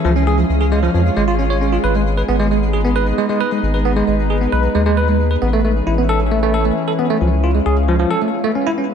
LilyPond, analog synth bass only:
\new Staff \with { instrumentName = "Analog synth bass" } { \clef bass \time 4/4 \key gis \phrygian \tempo 4 = 134 cis,4 cis,4 eis,8 gis,,4. | gis,,4 gis,,2 r4 | gis,,4 gis,,4 b,,8 dis,4. | a,,4 a,,2 r4 |
cis,4 cis,4 r2 | }